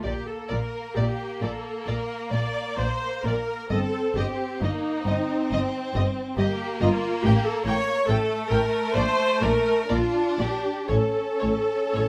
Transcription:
0.03 A#1 A#2 A#3 G4 D5
0.27 A4
0.49 A#1 A#2 A#4 D5
0.96 A#1 A#2 G4 D5
1.42 A#1 A#2 A4 D5
1.86 A#1 A#2 A#4 D5
2.31 A#1 A#2 D5
2.77 A#1 A#2 C5 D5
3.24 A#1 A#2 A#4 D5
3.71 G1 G2 C4 A4 D#5
4.16 G1 G2 G4 D#5
4.61 G1 G2 A#3 D#4 D#5
5.03 G1 G2 C4
5.08 D#5
5.51 G1 G2 D#5
5.94 G1 G2 D#5
6.36 G1 G2 A#3 G4 D#5
6.80 G1 G2 F4 D#5
7.23 A1 A2 G4 G5
7.45 A4
7.65 A1 A2 C#5 G5
8.07 A1 A2 A3 A4 G5
8.51 A1 A2 A#4 G5
8.95 A#1 A#2 C5 D5
9.41 A#1 A#2 A#4 D5
9.89 A#1 A#2 D4 F4 D5
10.38 A#1 A#2 G4 D5
10.88 A1 A2 C#4 A4 C#5
11.40 A1 A2 C#5
11.94 A1 A2 C#5

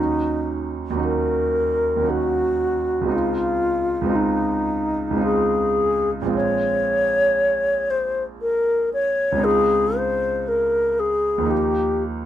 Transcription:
Already playing: D#2 F#3 C#4 D#4 F#4
0.90 D#2 F#3
0.95 C#4 D#4
1.00 F#4 A#4
1.96 D#2 F#3
2.02 C#4 D#4
2.07 F#4
3.01 C#2 G#3
3.06 C4 D#4
3.11 F4
3.15 F4
4.01 C#2 G#3
4.06 C4 D#4
4.11 F4
4.16 D#4
5.11 C#2 G#3
5.16 C4 D#4
5.21 F4 G#4
6.22 A#1 G#3
6.27 C4 F4
6.36 C#5
7.90 C5
8.42 A#4
8.94 C#5
9.32 C#2 G#3
9.37 C4 D#4
9.42 F4 G#4
9.97 C5
10.48 A#4
11.00 G#4
11.38 D#2 F3
11.42 A#3 D#4
11.51 G4

